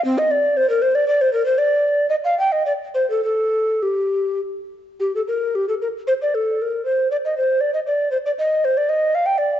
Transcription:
X:1
M:3/4
L:1/16
Q:1/4=116
K:Dphr
V:1 name="Recorder"
C e d2 c B c d d c B c | d4 e f g e d2 c A | A4 G4 z4 | G A B2 G A B2 c d A2 |
B2 c2 d e c2 d e d2 | c d e2 c d e2 f g d2 |]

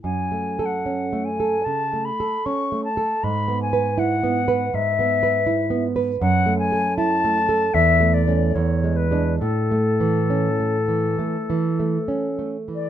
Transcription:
X:1
M:4/4
L:1/16
Q:1/4=75
K:A
V:1 name="Flute"
g3 f3 g2 a2 b2 c'2 a2 | b2 g2 f4 e6 z2 | f2 g2 a4 e2 d2 c2 B2 | A12- A2 z d |]
V:2 name="Nylon-string guitar"
(3F,,2 A,2 A2 (3C2 A,2 A2 (3C,2 A,2 A2 (3C2 A,2 A2 | (3G,,2 B,2 B2 (3E2 B,2 B2 (3G,,2 B,2 B2 (3E2 B,2 B2 | (3F,,2 A,2 A2 (3E2 A,2 A2 (3E,,2 A,2 [A,C]2 (3E,,2 G,2 [G,D]2 | (3A,,2 A,2 E,2 (3C2 A,2 E,2 (3A,2 E,2 A,2 (3C2 A,2 E,2 |]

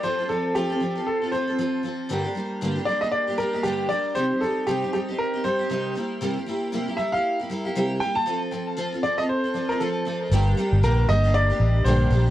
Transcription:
X:1
M:4/4
L:1/16
Q:"Swing 16ths" 1/4=117
K:Gm
V:1 name="Upright piano"
c2 A2 G4 A2 c4 z2 | z6 d e d2 B2 G2 d2 | c2 A2 G2 G2 B2 c4 z2 | z6 =e f2 z4 z g a- |
a z4 z d e c3 B A3 z | z4 B2 e2 d4 c3 z |]
V:2 name="Steel-string acoustic guitar"
[F,CFA] [CFA] [F,CFA]2 [F,CFA] [CFA] [F,CFA] [CFA]2 [CFA] [F,CFA] [CFA] [F,CFA]2 [F,CFA]2 | [G,,D,G,B,DG] [G,B,DG] [G,B,DG]2 [G,,D,G,B,DG] [G,B,DG] [G,B,DG] [G,B,DG]2 [G,B,DG] [G,B,DG] [G,B,DG] [G,,D,G,B,DG]2 [G,B,DG]2 | [C,G,CEG] [CEG] [G,CEG]2 [C,G,CEG] [CEG] [G,CEG] [CEG]2 [CEG] [G,CEG] [CEG] [C,G,CEG]2 [G,B,=EG]2 | [C,G,B,=EG] [B,EG] [G,B,EG]2 [C,G,B,EG] [B,EG] [G,B,EG] [B,EG]2 [B,EG] [G,B,EG] [B,EG] [C,G,B,EG]2 [G,B,EG]2 |
[F,CFA]2 [F,CFA]2 [F,CFA] [CFA] [F,CFA] [CFA]2 [CFA] [F,CFA] [CFA] [F,CFA]2 [F,CFA]2 | [G,,D,G,B,DG]2 [G,B,DG]2 [G,,D,G,B,DG]2 [G,B,DG] [G,B,DG]2 [G,B,DG]3 [G,,D,G,B,DG]2 [G,B,DG] G |]
V:3 name="Fingered electric bass" clef=bass
z16 | z16 | z16 | z16 |
z16 | G,,,2 z G,,, B,,,2 G,,,4 A,,,2 B,,,2 B,,,2 |]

